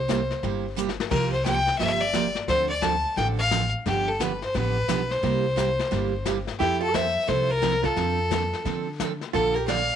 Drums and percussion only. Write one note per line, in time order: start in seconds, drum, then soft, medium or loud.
0.09 kick soft
0.09 snare medium
0.09 hi-hat pedal medium
0.31 snare soft
0.43 brush sweep soft
0.43 kick soft
0.43 snare soft
0.78 hi-hat pedal medium
0.89 snare medium
1.00 snare medium
1.11 brush sweep medium
1.11 kick medium
1.11 snare soft
1.11 crash medium
1.46 kick soft
1.46 snare medium
1.46 hi-hat pedal medium
1.67 snare soft
1.79 brush sweep soft
1.79 kick soft
1.79 snare soft
2.14 kick soft
2.14 snare medium
2.14 hi-hat pedal medium
2.35 snare soft
2.48 brush sweep medium
2.48 kick soft
2.48 snare soft
2.82 kick soft
2.82 snare medium
2.82 hi-hat pedal medium
3.17 brush sweep soft
3.17 kick soft
3.17 snare soft
3.51 kick soft
3.51 snare medium
3.51 hi-hat pedal medium
3.86 brush sweep medium
3.86 kick soft
3.86 snare soft
4.20 kick soft
4.20 snare medium
4.20 hi-hat pedal medium
4.42 snare soft
4.55 brush sweep soft
4.55 kick soft
4.55 snare soft
4.89 kick soft
4.89 snare medium
4.89 hi-hat pedal medium
5.11 snare soft
5.23 brush sweep soft
5.23 kick soft
5.23 snare soft
5.57 kick soft
5.57 snare medium
5.57 hi-hat pedal medium
5.79 snare soft
5.91 brush sweep soft
5.91 kick soft
5.91 snare soft
6.26 kick soft
6.26 snare medium
6.26 hi-hat pedal medium
6.47 snare soft
6.60 brush sweep soft
6.60 kick soft
6.60 snare soft
6.94 kick soft
6.94 snare medium
6.94 hi-hat pedal medium
7.28 brush sweep soft
7.28 kick soft
7.28 snare soft
7.63 kick soft
7.63 snare medium
7.63 hi-hat pedal soft
7.84 kick soft
7.84 snare soft
7.96 brush sweep soft
7.96 kick soft
7.96 snare soft
8.31 kick soft
8.31 snare medium
8.31 hi-hat pedal soft
8.53 snare soft
8.65 brush sweep soft
8.65 kick soft
8.65 snare soft
9.00 kick soft
9.00 snare medium
9.00 hi-hat pedal soft
9.21 snare soft
9.34 brush sweep soft
9.34 kick soft
9.34 snare soft
9.68 kick soft
9.68 snare medium
9.68 hi-hat pedal soft